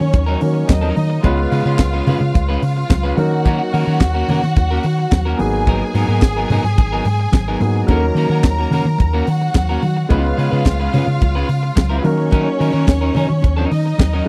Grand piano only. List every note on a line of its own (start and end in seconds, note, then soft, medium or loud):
0.00 0.38 F#3 medium
0.00 0.38 A#3 medium
0.00 0.39 C#4 medium
0.00 0.39 D#4 medium
0.00 0.40 A#4 medium
0.40 1.24 F#3 medium
0.40 1.24 A#3 soft
0.40 1.23 C#4 soft
0.40 1.24 D#4 soft
0.40 1.25 A#4 medium
1.23 3.14 G#3 medium
1.23 3.14 B3 medium
1.23 3.14 C#4 medium
1.23 3.15 F4 medium
1.23 3.15 B4 medium
3.16 5.34 F#3 medium
3.16 5.35 A#3 medium
3.16 5.35 C#4 medium
3.16 5.36 D#4 medium
3.16 5.36 A#4 medium
5.37 7.56 F#3 medium
5.37 7.56 A#3 medium
5.37 7.57 B3 medium
5.37 7.57 D#4 medium
5.37 7.58 G#4 medium
7.61 7.85 F#3 medium
7.61 7.87 A#3 soft
7.61 7.89 B3 soft
7.61 7.88 D#4 soft
7.61 7.89 G#4 medium
7.87 10.06 F#3 medium
7.87 10.06 A#3 medium
7.87 10.07 C#4 medium
7.87 10.07 D#4 medium
7.87 7.96 A4 medium
7.97 10.11 A#4 medium
10.09 12.00 G#3 medium
10.09 12.01 B3 medium
10.09 12.01 C#4 medium
10.09 10.18 D#4 medium
10.09 12.01 B4 medium
10.18 12.05 F4 medium
12.02 14.22 F#3 medium
12.02 14.22 A#3 medium
12.02 14.22 C#4 medium
12.02 14.23 D#4 medium
12.02 14.23 A#4 medium